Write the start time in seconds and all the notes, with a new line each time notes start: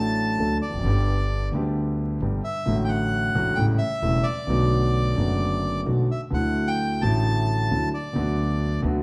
Already playing: A1 A2 F#3 A3 D4 A4 A5
0.39 D2 D3 F#3 A3 D4 A4
0.62 D5
0.68 E1 E2
0.73 F1 F2
0.79 F#1 F#2
0.84 G1 G2 D3 G3 B3 G4
1.53 D2 D3 G3 B3 G4
2.20 G1 G2 D3 G3 B3 G4
2.44 E5
2.66 A1 A2 D3 F#3 A3 F#4
2.84 G5
2.88 F#5
3.35 A1 A2 D3 F#3 A3 F#4
3.55 A1 A2 C#3 G3 A3 E4 G5
3.78 E5
4.02 E1 E2 C#3 G3 A3 E4
4.23 D5
4.47 B1 B2 D3 A3 B3 F#4
5.16 F#1 F#2 D3 A3 B3 F#4
5.86 B1 B2 D3 A3 B3 F#4
6.11 E5
6.30 D2 D3 F#3 A3 E4 F#5
6.67 G5
7.01 A1 A2 D3 F#3 A3 E4 A5
7.70 D2 D3 F#3 A3 E4
7.94 D5
8.13 D2 D3 F#3 B3 F#4
8.82 D2 D3 F#3 B3 F#4